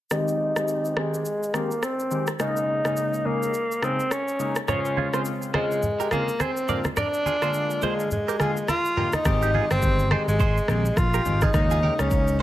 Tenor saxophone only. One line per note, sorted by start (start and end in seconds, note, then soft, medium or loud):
0.12 0.99 D#4 loud
0.98 1.56 G#3 medium
1.55 1.85 A#3 medium
1.84 2.28 C4 medium
2.41 3.28 D#4 loud
3.26 3.85 A#3 loud
3.84 4.13 C4 medium
4.12 4.57 C#4 loud
4.69 5.24 C#4 medium
5.55 6.08 G#3 medium
6.12 6.43 A#3 medium
6.41 6.86 C4 loud
6.98 7.85 D4 loud
7.84 8.12 G#3 medium
8.12 8.65 G#3 medium
8.69 9.16 F4 loud
9.14 9.71 D#4 loud
9.71 10.13 C4 loud
10.12 10.28 G#3 medium
10.28 10.99 G#3 medium
10.98 11.44 F4 loud
11.43 12.01 D#4 loud
12.00 12.40 C#4 loud